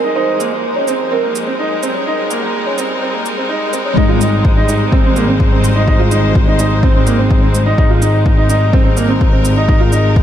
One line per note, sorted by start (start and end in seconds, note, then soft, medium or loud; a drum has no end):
0.00 0.14 G#1 medium
0.00 10.23 G3 medium
0.00 10.23 G#3 medium
0.00 10.23 D#4 medium
0.00 0.17 A#4 medium
0.00 1.68 C5 medium
0.00 riser medium
0.04 0.14 D#4 medium
0.15 3.95 G#1 medium
0.15 0.35 D#4 medium
0.15 1.14 C5 loud
0.40 0.49 A#3 medium
0.40 shaker medium
0.52 0.70 A#3 medium
0.70 5.49 A#4 medium
0.76 0.85 C#4 medium
0.88 1.06 C4 medium
0.88 shaker medium
1.11 1.21 C4 medium
1.11 3.45 A#4 medium
1.23 1.42 A#3 medium
1.35 shaker medium
1.47 1.56 C4 medium
1.59 1.78 D#4 medium
1.83 1.92 C4 medium
1.83 shaker medium
1.95 2.04 C#4 medium
2.07 2.25 D#4 medium
2.31 2.40 A#3 medium
2.31 shaker medium
2.42 2.61 A#3 medium
2.66 2.75 C#4 medium
2.78 2.97 C4 medium
2.78 shaker medium
3.02 3.11 C4 medium
3.13 3.32 A#3 medium
3.26 shaker medium
3.37 3.47 C4 medium
3.49 3.68 D#4 medium
3.73 3.82 C4 medium
3.73 shaker medium
3.85 3.95 C#4 medium
3.97 7.76 G#1 medium
3.97 4.06 D#4 medium
3.97 kick medium
4.09 4.18 F4 medium
4.21 4.39 D#4 medium
4.21 shaker medium
4.40 8.53 C5 medium
4.45 kick loud
4.57 4.66 D#4 medium
4.68 4.87 D#4 medium
4.68 shaker medium
4.92 5.01 C4 medium
4.92 kick loud
5.04 5.13 C4 medium
5.16 5.25 A#3 medium
5.16 shaker medium
5.28 5.46 C4 medium
5.40 kick medium
5.52 5.70 C4 medium
5.64 shaker medium
5.76 5.85 D#4 medium
5.87 5.97 D#4 medium
5.87 kick loud
5.99 6.09 F4 medium
6.11 6.30 D#4 medium
6.11 shaker medium
6.35 kick loud
6.47 6.56 D#4 medium
6.59 6.78 D#4 medium
6.59 shaker medium
6.83 6.92 C4 medium
6.83 kick loud
6.95 7.04 C4 medium
7.06 7.16 A#3 medium
7.06 shaker medium
7.18 7.37 C4 medium
7.31 kick loud
7.42 7.61 C4 medium
7.54 shaker medium
7.66 7.75 D#4 medium
7.78 10.23 G#1 medium
7.78 7.87 D#4 medium
7.78 kick loud
7.90 7.99 F4 medium
8.01 8.20 D#4 medium
8.01 shaker medium
8.26 10.23 A#4 medium
8.26 kick loud
8.37 8.47 D#4 medium
8.49 8.68 D#4 medium
8.49 shaker medium
8.73 8.82 C4 medium
8.73 kick loud
8.85 8.94 C4 medium
8.97 9.06 A#3 medium
8.97 shaker medium
9.09 9.27 C4 medium
9.21 kick loud
9.32 9.51 C4 medium
9.45 shaker medium
9.56 9.66 D#4 medium
9.68 9.77 D#4 medium
9.68 kick loud
9.80 9.89 F4 medium
9.92 10.11 D#4 medium
9.92 shaker medium
10.16 kick loud